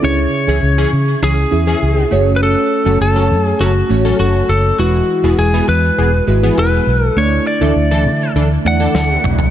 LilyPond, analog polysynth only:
\new Staff \with { instrumentName = "Analog polysynth" } { \time 4/4 \key cis \minor \tempo 4 = 101 r8. <e cis' gis'>16 r16 <e cis' gis'>16 r8 <e cis' gis'>16 r8 <e cis' gis'>8. r8 | r8. <fis cis' a'>16 r16 <fis cis' a'>16 r8 <fis cis' a'>16 r8 <fis cis' a'>8. r8 | r8. <e b gis'>16 r16 <e b gis'>16 r8 <e b gis'>16 r8 <e b gis'>8. r8 | r8. <e d' a'>16 r16 <e d' a'>16 r8 <e d' a'>16 r8 <e d' a'>8. r8 | }